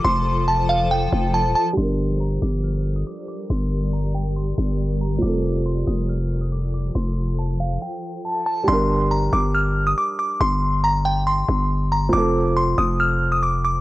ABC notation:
X:1
M:4/4
L:1/16
Q:1/4=139
K:Gm
V:1 name="Synth bell"
c'4 a2 f2 g4 a2 a2 | z4 b2 d'2 f'3 e' d'2 d'2 | c'4 b2 g2 c'6 b2 | d'4 c'2 e'2 f'3 e' d'2 d'2 |
c'4 a2 f2 g4 a2 a2 | c'4 b2 d'2 f'3 e' d'2 d'2 | c'4 b2 g2 c'6 b2 | d'4 c'2 e'2 f'3 e' d'2 d'2 |]
V:2 name="Ambient pad"
[F,FAc]16 | [G,GBd]16- | [G,GBd]16 | [F,FAc]16- |
[F,FAc]8 z8 | z16 | z16 | z16 |]
V:3 name="Grand piano"
[F,CA]16 | [G,DB]16- | [G,DB]16 | [F,CA]16- |
[F,CA]16 | [G,DB]16- | [G,DB]16 | [F,CA]16 |]
V:4 name="808-style bass" clef=bass
F,,,8- F,,,2 F,,,3 E,,, z2 | G,,,6 G,,,6 z4 | G,,,8- G,,,2 G,,,6 | F,,,6 F,,,8- F,,,2 |
F,,,8 z8 | G,,,6 G,,,6 z4 | G,,,8- G,,,2 G,,,6 | F,,,6 F,,,8- F,,,2 |]